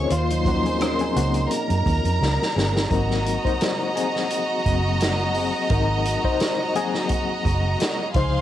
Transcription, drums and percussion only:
0.10 closed hi-hat
0.30 closed hi-hat
0.45 kick, closed hi-hat
0.66 closed hi-hat
0.81 cross-stick, closed hi-hat
0.99 closed hi-hat
1.16 closed hi-hat
1.34 closed hi-hat
1.51 closed hi-hat
1.70 closed hi-hat
1.86 kick, closed hi-hat
2.05 closed hi-hat
2.23 snare
2.42 snare
2.58 snare
2.77 snare
2.91 kick, closed hi-hat
3.11 snare
3.26 closed hi-hat
3.45 kick, closed hi-hat
3.61 snare, closed hi-hat
3.97 closed hi-hat
4.16 snare
4.30 closed hi-hat
4.66 kick, closed hi-hat
5.00 snare, closed hi-hat
5.34 open hi-hat
5.70 kick, closed hi-hat
6.05 closed hi-hat
6.24 kick
6.40 snare, closed hi-hat
6.75 closed hi-hat
6.94 snare
7.09 kick, closed hi-hat
7.45 kick, closed hi-hat
7.80 snare, closed hi-hat
8.14 kick, closed hi-hat

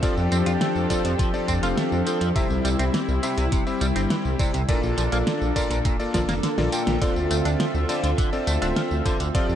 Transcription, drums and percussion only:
0.03 kick, closed hi-hat, tambourine
0.17 tambourine
0.32 closed hi-hat, tambourine
0.46 closed hi-hat, tambourine
0.61 snare, closed hi-hat, tambourine
0.76 tambourine
0.90 kick, closed hi-hat, tambourine
1.05 closed hi-hat, tambourine
1.19 kick, closed hi-hat, tambourine
1.34 tambourine
1.48 kick, closed hi-hat, tambourine
1.63 closed hi-hat, tambourine
1.77 snare, closed hi-hat, tambourine
1.92 tambourine
2.07 closed hi-hat, tambourine
2.21 closed hi-hat, tambourine
2.36 kick, closed hi-hat, tambourine
2.50 tambourine
2.65 closed hi-hat, tambourine
2.79 closed hi-hat, tambourine
2.94 snare, closed hi-hat, tambourine
3.09 tambourine
3.23 closed hi-hat, tambourine
3.38 closed hi-hat, tambourine
3.52 kick, closed hi-hat, tambourine
3.67 tambourine
3.81 closed hi-hat, tambourine
3.96 closed hi-hat, tambourine
4.10 snare, closed hi-hat, tambourine
4.25 tambourine
4.39 kick, closed hi-hat, tambourine
4.54 closed hi-hat, tambourine
4.69 kick, closed hi-hat, tambourine
4.83 tambourine
4.98 closed hi-hat, tambourine
5.12 closed hi-hat, tambourine
5.27 snare, closed hi-hat, tambourine
5.41 tambourine
5.56 kick, closed hi-hat, tambourine
5.71 closed hi-hat, tambourine
5.85 kick, closed hi-hat, tambourine
6.00 tambourine
6.14 kick, snare, closed hi-hat, tambourine
6.29 snare, closed hi-hat, tambourine
6.43 snare, closed hi-hat, tambourine
6.58 snare, tambourine
6.72 closed hi-hat, tambourine
6.87 snare, closed hi-hat, tambourine
7.02 kick, closed hi-hat, tambourine
7.16 tambourine
7.31 closed hi-hat, tambourine
7.45 closed hi-hat, tambourine
7.60 snare, closed hi-hat, tambourine
7.75 tambourine
7.89 closed hi-hat, tambourine
8.04 closed hi-hat, tambourine
8.18 kick, closed hi-hat, tambourine
8.33 tambourine
8.47 closed hi-hat, tambourine
8.62 closed hi-hat, tambourine
8.76 snare, closed hi-hat, tambourine
8.91 tambourine
9.06 kick, closed hi-hat, tambourine
9.20 closed hi-hat, tambourine
9.35 kick, closed hi-hat, tambourine
9.49 tambourine

